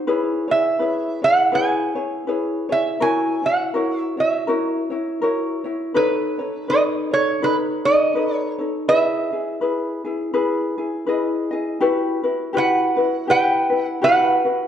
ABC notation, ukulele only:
X:1
M:4/4
L:1/8
Q:"Swing" 1/4=82
K:E
V:1 name="Ukulele"
[EGBc] [EGc] [EGBc] [EGc] [EGBc] [EGc] [EGBc] [EGc] | [EF^Ac] [EFc] [EFAc] [EFc] [EFAc] [EFc] [EFAc] [EFc] | [DABc] [DAc] [DABc] [DAc] [DABc] [DAc] [DABc] [DAc] | [EGB] [EG] [EGB] [EG] [EGB] [EG] [EGBd] [EGd] |
[K:Em] [EFGB] [EFB] [EFGB] [EFB] [EGB] [EB] [EFGB] [EFB] |]